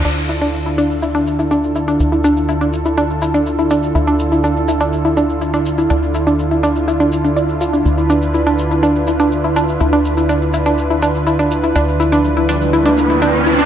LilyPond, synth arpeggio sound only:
\new Staff \with { instrumentName = "Synth arpeggio sound" } { \time 4/4 \key d \dorian \tempo 4 = 123 d'16 r16 e'16 d'16 r16 e'16 d'16 r16 e'16 d'16 r16 e'16 d'16 r16 e'16 d'16 | r16 e'16 d'16 r16 e'16 d'16 r16 e'16 d'16 r16 e'16 d'16 r16 e'16 d'16 r16 | e'16 d'16 r16 e'16 d'16 r16 e'16 d'16 r16 e'16 d'16 r16 e'16 d'16 r16 e'16 | d'16 r16 e'16 d'16 r16 e'16 d'16 r16 e'16 d'16 r16 d'16 d''16 r16 f'16 d'16 |
r16 e'16 d'16 r16 e'16 d'16 r16 e'16 d'16 r16 e'16 d'16 r16 e'16 d'16 r16 | e'16 d'16 r16 e'16 d'16 r16 e'16 d'16 r16 e'16 d'16 r16 e'16 d'16 r16 e'16 | d'16 r16 e'16 d'16 r16 e'16 d'16 r16 e'16 d'16 r16 e'16 d'16 r16 e'16 d'16 | }